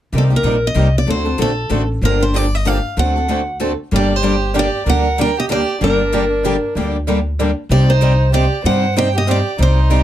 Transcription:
0.12 upright bass C2, steel-string acoustic guitar C3 G3 A#3 D#4 G4
0.18 steel-string acoustic guitar A4
0.30 steel-string acoustic guitar A#3 D#4 G4
0.36 steel-string acoustic guitar A#4
0.43 upright bass A#1, steel-string acoustic guitar C3 G3 A#3 D#4 G4
0.67 steel-string acoustic guitar D#5
0.74 upright bass C2, steel-string acoustic guitar C3 G3 A#3 D#4 G4
0.98 steel-string acoustic guitar D5
1.07 upright bass D2, steel-string acoustic guitar D3 A3 C4 F#4 A4 C5
1.25 steel-string acoustic guitar C4 F#4 A4
1.38 upright bass A#1, steel-string acoustic guitar D3 A3 C4 F#4 A4
1.69 upright bass A1, steel-string acoustic guitar D3 A3 C4 F#4 A4
2.01 upright bass G1, steel-string acoustic guitar D3 F3 A#3 D4 G4 A#4
2.20 steel-string acoustic guitar A#3 D4 G4 C5
2.34 steel-string acoustic guitar D3 F3 A#3 D4 G4 D5
2.55 steel-string acoustic guitar D#5
2.65 steel-string acoustic guitar D3 F3 A#3 D4 G4 F5
2.97 upright bass D2, steel-string acoustic guitar D3 A3 C4 F#4 A4 F#5
3.16 steel-string acoustic guitar C4 F#4 A4
3.28 steel-string acoustic guitar D3 A3 C4 F#4 A4
3.60 steel-string acoustic guitar D3 A3 C4 F#4 A4
3.91 upright bass G1, steel-string acoustic guitar D3 G3 A#3 D4 G4, violin G4
3.96 steel-string acoustic guitar D5
4.11 violin G4
4.16 steel-string acoustic guitar C5
4.23 steel-string acoustic guitar D3 G3 A#3 D4 G4
4.54 steel-string acoustic guitar D3 G3 A#3 D4 G4, violin G4
4.59 steel-string acoustic guitar D5
4.86 upright bass D2, steel-string acoustic guitar D3 G3 A#3 D4 G4 F#5, violin A#4
5.18 steel-string acoustic guitar D3 G3 A#3 D4 G4 G5, violin A#4
5.38 violin G4, steel-string acoustic guitar D#5
5.49 steel-string acoustic guitar D3 G3 A#3 D4 G4 D5, violin G4
5.81 upright bass G1, steel-string acoustic guitar D3 G3 A#3 D4 G4 A#4, violin D4
6.12 steel-string acoustic guitar D3 G3 A#3 D4 G4
6.45 steel-string acoustic guitar D3 G3 A#3 D4 G4
6.75 upright bass D2, steel-string acoustic guitar D3 G3 A#3 D4 G4
7.07 steel-string acoustic guitar D3 G3 A#3 D4 G4
7.40 steel-string acoustic guitar D3 G3 A#3 D4 G4
7.69 upright bass C2, steel-string acoustic guitar C3 G3 C4 D#4 G4 D5, violin G4
7.90 violin D#4, steel-string acoustic guitar C5
8.01 steel-string acoustic guitar C3 G3 C4 D#4 G4
8.33 steel-string acoustic guitar C3 G3 C4 D#4 G4 D5, violin G4
8.64 upright bass G2, steel-string acoustic guitar C3 G3 C4 D#4 G4 F#5, violin C5
8.96 steel-string acoustic guitar C3 G3 C4 D#4 G4 G5, violin C5
9.15 violin G4, steel-string acoustic guitar D#5
9.27 steel-string acoustic guitar C3 G3 C4 D#4 G4 D5, violin G4
9.58 upright bass C2, steel-string acoustic guitar C3 G3 C4 D#4 G4, violin D#4
9.62 steel-string acoustic guitar C5
9.90 steel-string acoustic guitar C3 G3 C4 D#4 G4

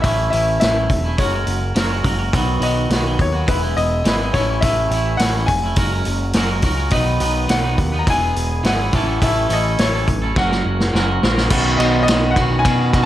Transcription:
0.02 picked electric bass A1, clean electric guitar A2 E3 A3 C#4 E4, upright piano E5, kick, open hi-hat
0.30 picked electric bass A1, clean electric guitar E3 A3 C#4 E4, upright piano E5, open hi-hat
0.60 picked electric bass A1, clean electric guitar A2 E3 A3 C#4, upright piano E5, snare, open hi-hat
0.64 clean electric guitar E4
0.75 clean electric guitar A3 C#4 E4
0.90 picked electric bass E1, muted clean electric guitar stroke, kick, open hi-hat
1.04 clean electric guitar A3 C#4 E4
1.17 picked electric bass F#1, clean electric guitar F#3 G#3 C#4 F#4 A#4, upright piano C#5, kick, open hi-hat
1.32 clean electric guitar C#4 F#4 A#4
1.47 picked electric bass F#1, open hi-hat
1.75 picked electric bass F#1, clean electric guitar F#3 G#3 C#4 F#4 A#4, snare, open hi-hat
1.89 clean electric guitar C#4 F#4 A#4
2.03 picked electric bass F#1, clean electric guitar G#3 C#4 F#4 A#4, kick, open hi-hat
2.19 clean electric guitar C#4 F#4 A#4
2.33 picked electric bass B1, clean electric guitar B2 D#3 F#3 B3 F#4, kick, open hi-hat
2.60 picked electric bass B1, clean electric guitar D#3 F#3 B3 F#4, upright piano D#5, open hi-hat
2.90 picked electric bass B1, clean electric guitar B2 D#3 F#3 B3 F#4, snare, open hi-hat
3.05 clean electric guitar F#3 B3 F#4
3.19 picked electric bass D#2, upright piano C#5, muted clean electric guitar stroke, kick, open hi-hat
3.32 clean electric guitar F#3 B3 F#4
3.47 picked electric bass E1, clean electric guitar E3 G#3 B3 E4, upright piano B4, kick, open hi-hat
3.61 clean electric guitar G#3 B3 E4
3.76 picked electric bass E1, upright piano D#5, open hi-hat
4.04 picked electric bass G#1, clean electric guitar E3 G#3 B3 E4, snare, open hi-hat
4.18 clean electric guitar G#3 B3 E4
4.33 picked electric bass A1, clean electric guitar A2 E3 A3 C#4 E4, upright piano C#5, kick, open hi-hat
4.48 clean electric guitar A3 C#4 E4
4.61 picked electric bass A1, clean electric guitar A2 E3 A3 C#4, upright piano E5, kick, open hi-hat
4.65 clean electric guitar E4
4.90 picked electric bass A1, clean electric guitar E3 A3 C#4 E4, open hi-hat
5.17 picked electric bass A1, clean electric guitar A2 E3 A3 C#4, upright piano F#5, snare, open hi-hat
5.22 clean electric guitar E4
5.35 clean electric guitar A3 C#4 E4
5.46 picked electric bass F1, upright piano G#5, muted clean electric guitar stroke, kick, open hi-hat
5.64 clean electric guitar A3 C#4 E4
5.76 picked electric bass F#1, clean electric guitar F#3 G#3 C#4 F#4 A#4, kick, open hi-hat
5.92 clean electric guitar C#4 F#4 A#4
6.05 picked electric bass F#1, open hi-hat
6.33 picked electric bass F#1, clean electric guitar F#3 G#3 C#4 F#4 A#4, snare, open hi-hat
6.49 clean electric guitar C#4 F#4 A#4
6.62 picked electric bass C#2, clean electric guitar G#3 C#4 F#4 A#4, kick, open hi-hat
6.77 clean electric guitar C#4 F#4 A#4
6.90 picked electric bass B1, clean electric guitar B2 D#3 F#3 B3 D#4 B4, upright piano D#5, kick, open hi-hat
7.20 picked electric bass B1, clean electric guitar F#3 B3 D#4 B4, open hi-hat
7.48 picked electric bass B1, clean electric guitar B2 D#3 F#3 B3 D#4 B4, upright piano F#5, snare, open hi-hat
7.64 clean electric guitar F#3 B3 D#4 B4
7.78 picked electric bass D#2, muted clean electric guitar stroke, kick, open hi-hat
7.92 clean electric guitar F#3 B3 D#4 B4
7.99 upright piano A#5
8.07 picked electric bass E1, clean electric guitar E3 G#3 B3 E4 G#4, upright piano G#5, kick, open hi-hat
8.21 clean electric guitar B3 E4 G#4
8.35 picked electric bass E1, open hi-hat
8.63 picked electric bass G#1, clean electric guitar E3 G#3 B3 E4 G#4, upright piano F#5, snare, open hi-hat
8.80 clean electric guitar B3 E4 G#4
8.93 picked electric bass A1, clean electric guitar A2 E3 A3 C#4 E4 A4, kick, open hi-hat
9.07 clean electric guitar A3 C#4 E4 A4
9.21 picked electric bass A1, clean electric guitar A2 E3 A3 C#4 E4 A4, upright piano E5, kick, open hi-hat
9.49 picked electric bass A1, clean electric guitar A3 C#4 E4 A4, upright piano D#5, open hi-hat
9.78 picked electric bass A1, clean electric guitar A2 E3 A3 C#4 E4 A4, upright piano C#5, snare, open hi-hat
9.94 clean electric guitar A3 C#4 E4 A4
10.07 picked electric bass A1, muted clean electric guitar stroke, kick, open hi-hat
10.22 clean electric guitar A3 C#4 E4 A4
10.36 picked electric bass F#1, clean electric guitar F#3 G#3 C#4 F#4 A#4, upright piano F#5, kick, snare
10.51 clean electric guitar C#4 F#4 A#4, snare
10.65 picked electric bass F#1
10.80 snare
10.93 picked electric bass F#1, clean electric guitar F#3 G#3 C#4 F#4 A#4, snare
11.08 clean electric guitar C#4 F#4 A#4
11.22 picked electric bass A#1, clean electric guitar G#3 C#4 F#4 A#4, snare
11.36 clean electric guitar C#4 F#4 A#4, snare
11.50 picked electric bass B1, clean electric guitar B2 D#3 B3 C#4 F#4, kick, crash
11.77 picked electric bass B1, clean electric guitar B2 D#3 B3 C#4 F#4, upright piano D#5, ride
12.03 upright piano D#5
12.07 picked electric bass B1, clean electric guitar B2 D#3 B3 C#4 F#4, snare, ride
12.31 upright piano F#5
12.35 picked electric bass B1, clean electric guitar B2 D#3 B3 C#4 F#4, kick, ride
12.59 upright piano G#5
12.64 clean electric guitar B2 D#3 B3 C#4 F#4, picked electric bass B2, kick, ride
12.93 clean electric guitar B2 D#3 B3 C#4 F#4, kick, ride

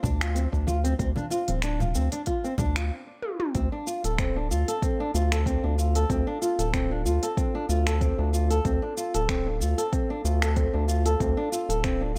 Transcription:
0.03 analog synth bass D2, nylon-string guitar D4, kick, muted conga, low conga, shaker
0.21 nylon-string guitar F4, finger snap, open hi-hat, shaker
0.35 nylon-string guitar C4, open hi-hat, shaker
0.52 analog synth bass D2, nylon-string guitar D4, kick, shaker
0.67 nylon-string guitar F4, muted conga, high conga, shaker
0.84 nylon-string guitar C4, open hi-hat, shaker
0.99 analog synth bass D2, nylon-string guitar C4, kick, open hi-hat, shaker
1.16 nylon-string guitar D4, high conga, low conga, shaker
1.30 nylon-string guitar F4, muted conga, shaker
1.48 analog synth bass D1, nylon-string guitar C4, open hi-hat, high conga, shaker
1.62 nylon-string guitar D4, finger snap, open hi-hat, shaker
1.80 nylon-string guitar F4, high conga, low conga, shaker
1.95 analog synth bass D2, nylon-string guitar C4, shaker
2.12 nylon-string guitar D4, open hi-hat, muted conga, shaker
2.26 nylon-string guitar F4, kick, open hi-hat, shaker
2.44 nylon-string guitar C4, shaker
2.58 analog synth bass D2, nylon-string guitar D4, kick, muted conga, low conga, shaker
2.76 nylon-string guitar F4, finger snap, open hi-hat, shaker
3.22 high tom
3.40 mid tom
3.55 analog synth bass D2, nylon-string guitar C4, kick, open hi-hat, shaker
3.72 nylon-string guitar D4
3.87 nylon-string guitar F4, shaker
4.04 analog synth bass D1, nylon-string guitar A4, open hi-hat, shaker
4.18 nylon-string guitar C4, finger snap, kick, open hi-hat, shaker
4.36 nylon-string guitar D4
4.51 analog synth bass D2, nylon-string guitar F4, shaker
4.68 nylon-string guitar A4, open hi-hat, shaker
4.82 nylon-string guitar C4, kick, open hi-hat, shaker
5.00 nylon-string guitar D4
5.14 analog synth bass D2, nylon-string guitar F4, shaker
5.32 nylon-string guitar A4, finger snap, open hi-hat, shaker
5.46 nylon-string guitar C4, kick, open hi-hat, shaker
5.64 analog synth bass D2, nylon-string guitar D4
5.78 nylon-string guitar F4, shaker
5.95 nylon-string guitar A4, open hi-hat, shaker
6.10 analog synth bass D2, nylon-string guitar C4, kick, open hi-hat, shaker
6.27 nylon-string guitar D4
6.42 nylon-string guitar F4, shaker
6.59 analog synth bass D1, nylon-string guitar A4, open hi-hat, shaker
6.73 nylon-string guitar C4, finger snap, kick, open hi-hat, shaker
6.91 nylon-string guitar D4
7.05 analog synth bass D2, nylon-string guitar F4, shaker
7.23 nylon-string guitar A4, open hi-hat, shaker
7.37 nylon-string guitar C4, kick, open hi-hat, shaker
7.55 nylon-string guitar D4
7.69 analog synth bass D2, nylon-string guitar F4, shaker
7.87 nylon-string guitar A4, finger snap, open hi-hat, shaker
8.01 nylon-string guitar C4, kick, open hi-hat, shaker
8.18 analog synth bass D2, nylon-string guitar D4
8.33 nylon-string guitar F4, shaker
8.50 nylon-string guitar A4, open hi-hat, shaker
8.65 analog synth bass D2, nylon-string guitar C4, kick, open hi-hat, shaker
8.82 nylon-string guitar D4
8.97 nylon-string guitar F4, shaker
9.14 analog synth bass D1, nylon-string guitar A4, open hi-hat, shaker
9.29 nylon-string guitar C4, finger snap, kick, open hi-hat, shaker
9.46 nylon-string guitar D4
9.60 analog synth bass D2, nylon-string guitar F4, shaker
9.78 nylon-string guitar A4, open hi-hat, shaker
9.92 nylon-string guitar C4, kick, open hi-hat, shaker
10.10 nylon-string guitar D4
10.25 analog synth bass D2, nylon-string guitar F4, shaker
10.42 nylon-string guitar A4, finger snap, open hi-hat, shaker
10.56 nylon-string guitar C4, kick, open hi-hat, shaker
10.73 analog synth bass D2, nylon-string guitar D4
10.88 nylon-string guitar F4, shaker
11.06 nylon-string guitar A4, open hi-hat, shaker
11.20 analog synth bass D2, nylon-string guitar C4, kick, open hi-hat, shaker
11.37 nylon-string guitar D4
11.52 nylon-string guitar F4, shaker
11.69 analog synth bass D1, nylon-string guitar A4, open hi-hat, shaker
11.83 nylon-string guitar C4, finger snap, kick, open hi-hat, shaker
12.01 nylon-string guitar D4
12.15 nylon-string guitar F4

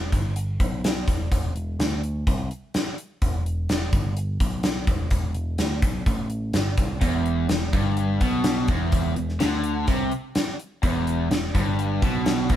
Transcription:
Already playing: picked electric bass E1
0.12 picked electric bass G1, kick, closed hi-hat
0.36 closed hi-hat
0.60 picked electric bass B1, kick, closed hi-hat
0.84 snare, closed hi-hat
1.08 picked electric bass E1, kick, closed hi-hat
1.32 kick, closed hi-hat
1.55 picked electric bass E1, closed hi-hat
1.79 picked electric bass D2, snare, closed hi-hat
2.04 closed hi-hat
2.27 picked electric bass C2, kick, closed hi-hat
2.51 closed hi-hat
2.74 snare, closed hi-hat
2.98 closed hi-hat
3.22 picked electric bass E1, kick, closed hi-hat
3.46 closed hi-hat
3.69 picked electric bass E1, snare, closed hi-hat
3.93 picked electric bass G1, kick, closed hi-hat
4.17 closed hi-hat
4.40 picked electric bass B1, kick, closed hi-hat
4.63 snare, closed hi-hat
4.87 picked electric bass E1, kick, closed hi-hat
5.11 kick, closed hi-hat
5.35 picked electric bass E1, closed hi-hat
5.58 picked electric bass D2, snare, closed hi-hat
5.82 picked electric bass B1, kick, closed hi-hat
6.06 picked electric bass A1, kick, closed hi-hat
6.30 closed hi-hat
6.53 picked electric bass G1, snare, closed hi-hat
6.77 picked electric bass C2, kick, closed hi-hat
7.01 picked electric bass E1, overdriven electric guitar E2, kick, closed hi-hat
7.26 closed hi-hat
7.49 picked electric bass E1, overdriven electric guitar E2, snare, closed hi-hat
7.73 picked electric bass G1, overdriven electric guitar G2, kick, closed hi-hat
7.97 closed hi-hat
8.21 picked electric bass B1, overdriven electric guitar B2, kick, closed hi-hat
8.44 snare, closed hi-hat
8.68 picked electric bass E1, overdriven electric guitar E2, kick, closed hi-hat
8.92 kick, closed hi-hat
9.16 picked electric bass E1, overdriven electric guitar E2, closed hi-hat
9.29 snare
9.40 picked electric bass D2, overdriven electric guitar D3, snare, closed hi-hat
9.64 closed hi-hat
9.87 picked electric bass C2, overdriven electric guitar C3, kick, closed hi-hat
10.11 closed hi-hat
10.35 snare, closed hi-hat
10.59 closed hi-hat
10.83 picked electric bass E1, overdriven electric guitar E2, kick, closed hi-hat
11.07 closed hi-hat
11.31 picked electric bass E1, overdriven electric guitar E2, snare, closed hi-hat
11.55 picked electric bass G1, overdriven electric guitar G2, kick, closed hi-hat
11.79 closed hi-hat
12.02 picked electric bass B1, overdriven electric guitar B2, kick, closed hi-hat
12.26 snare, closed hi-hat
12.49 picked electric bass E1, overdriven electric guitar E2, kick, closed hi-hat

